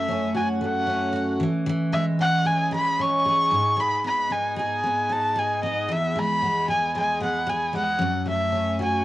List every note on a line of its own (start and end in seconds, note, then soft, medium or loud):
0.00 1.45 F#2 medium
0.00 0.60 A3 medium
0.00 0.30 E5 medium
0.08 0.86 C#4 medium
0.34 1.12 F#4 medium
0.34 0.48 G#5 medium
0.61 1.45 A3 medium
0.61 1.37 F#5 medium
0.87 2.19 C#4 medium
1.13 1.45 F#4 medium
1.40 1.65 E3 medium
1.66 3.56 E3 medium
1.93 2.71 G#3 medium
1.93 2.05 E5 medium
2.19 2.98 C#4 medium
2.19 2.48 F#5 loud
2.45 3.25 G#4 medium
2.45 2.72 G#5 loud
2.71 4.04 G#3 medium
2.71 3.03 B5 loud
2.99 3.57 C#4 medium
2.99 3.81 C#6 loud
3.25 4.56 G#4 medium
3.51 3.76 G#2 medium
3.77 5.88 G#2 medium
3.77 4.05 B5 loud
4.04 4.83 B3 medium
4.04 4.33 B5 medium
4.30 5.08 D#4 medium
4.30 4.57 G#5 medium
4.56 5.35 G#4 medium
4.56 5.13 G#5 medium
4.83 5.63 B3 medium
5.09 5.94 D#4 medium
5.09 5.40 A5 medium
5.36 6.68 G#4 medium
5.36 5.63 G#5 medium
5.63 6.15 B3 medium
5.63 5.93 D#5 medium
5.88 7.98 E2 medium
5.88 6.20 E5 medium
6.16 6.94 G#3 medium
6.16 6.69 B5 loud
6.42 7.19 B3 medium
6.68 7.46 G#4 medium
6.68 6.93 G#5 medium
6.95 7.72 G#3 medium
6.95 7.20 G#5 medium
7.20 8.05 B3 medium
7.20 7.50 F#5 medium
7.47 8.05 G#4 medium
7.47 7.74 G#5 medium
7.73 8.05 G#3 medium
7.73 8.24 F#5 medium
7.99 9.04 F#2 medium
8.26 9.04 A3 medium
8.26 8.76 E5 medium
8.52 9.04 C#4 medium
8.79 9.04 F#4 medium
8.79 9.04 G#5 medium